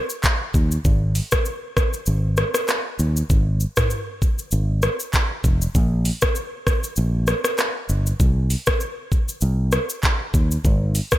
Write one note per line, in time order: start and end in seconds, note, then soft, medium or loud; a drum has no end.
0.10 shaker medium
0.23 kick medium
0.23 clap medium
0.23 shaker medium
0.54 0.77 D#2 medium
0.54 kick loud
0.54 shaker medium
0.72 shaker medium
0.85 1.19 G#1 loud
0.85 kick loud
0.85 shaker medium
1.15 open hi-hat medium
1.15 shaker medium
1.32 kick medium
1.32 cross-stick loud
1.32 shaker medium
1.45 shaker medium
1.77 kick medium
1.77 cross-stick loud
1.77 shaker medium
1.93 shaker medium
2.06 2.42 G#1 loud
2.06 shaker medium
2.37 cross-stick medium
2.37 shaker medium
2.54 cross-stick loud
2.54 shaker medium
2.68 cross-stick medium
2.68 clap medium
2.68 shaker medium
2.99 3.22 D#2 medium
2.99 shaker medium
3.17 shaker medium
3.30 3.64 G#1 loud
3.30 kick loud
3.30 shaker medium
3.60 shaker medium
3.76 kick medium
3.76 cross-stick loud
3.76 mid tom loud
3.76 shaker medium
3.90 shaker medium
4.22 kick loud
4.22 shaker medium
4.39 shaker medium
4.51 4.87 G#1 loud
4.51 shaker medium
4.82 cross-stick loud
4.82 shaker medium
5.00 shaker medium
5.13 kick medium
5.13 clap medium
5.13 shaker medium
5.44 5.66 F1 medium
5.44 kick loud
5.44 shaker medium
5.62 shaker medium
5.75 6.09 A#1 loud
5.75 kick loud
5.75 shaker medium
6.05 open hi-hat medium
6.05 shaker medium
6.22 kick medium
6.22 cross-stick loud
6.22 shaker medium
6.35 shaker medium
6.67 kick medium
6.67 cross-stick medium
6.67 shaker medium
6.84 shaker medium
6.96 7.32 A#1 loud
6.96 shaker medium
7.27 cross-stick medium
7.27 shaker medium
7.44 cross-stick loud
7.44 shaker medium
7.58 cross-stick medium
7.58 clap medium
7.58 shaker medium
7.89 8.11 G1 medium
7.89 shaker medium
8.07 shaker medium
8.20 8.54 C2 loud
8.20 kick loud
8.20 shaker medium
8.50 open hi-hat medium
8.50 shaker medium
8.66 kick medium
8.66 cross-stick loud
8.66 shaker medium
8.80 shaker medium
9.12 kick medium
9.12 shaker medium
9.29 shaker medium
9.41 9.77 C2 loud
9.41 shaker medium
9.72 cross-stick loud
9.72 shaker medium
9.90 shaker medium
10.03 kick medium
10.03 clap medium
10.03 shaker medium
10.34 10.56 D#2 medium
10.34 kick loud
10.34 shaker medium
10.51 shaker medium
10.65 10.99 G#1 loud
10.65 kick loud
10.65 shaker medium
10.95 open hi-hat medium
10.95 shaker medium
11.11 kick medium
11.11 cross-stick loud
11.11 shaker medium